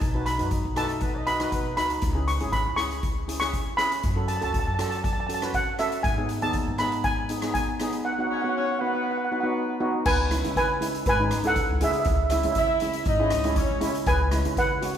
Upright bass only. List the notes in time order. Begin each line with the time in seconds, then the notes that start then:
0.02 B1
0.40 F#2
0.65 B1
1.52 B1
1.78 C#2
2.03 C#2
2.42 G#1
2.67 C#2
4.04 F#2
4.42 C#2
4.67 F#2
6.05 G#2
6.43 D#2
6.67 G#2
10.06 C#2
10.45 C#3
11.06 G#1
11.33 C#2
11.70 C#2
11.82 C#3
12.06 C#2
12.45 C#3
13.06 G#1
13.32 C#2
13.71 C#2
13.83 C#3
14.07 C#2
14.45 C#3